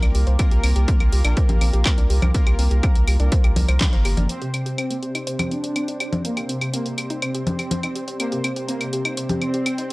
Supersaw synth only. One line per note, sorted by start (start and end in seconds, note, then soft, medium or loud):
4.29 4.38 C4 medium
4.42 4.50 C3 medium
4.54 4.62 C3 medium
4.66 4.75 C3 medium
4.78 4.87 C4 medium
4.91 4.99 C3 medium
5.03 5.11 C3 medium
5.27 5.36 C3 medium
5.40 5.48 C3 medium
5.52 6.15 D4 medium
6.25 6.33 A#3 medium
6.37 6.45 C3 medium
6.49 6.58 C3 medium
6.62 6.70 C3 medium
6.74 6.82 A#3 medium
6.86 6.94 C3 medium
6.98 7.06 C3 medium
7.22 7.31 C3 medium
7.35 7.43 C3 medium
7.47 8.10 C4 medium
8.20 8.28 A#3 medium
8.32 8.40 C3 medium
8.44 8.53 C3 medium
8.57 8.65 C3 medium
8.69 8.77 A#3 medium
8.81 8.89 C3 medium
8.93 9.02 C3 medium
9.17 9.26 C3 medium
9.30 9.38 C3 medium
9.42 9.93 C4 medium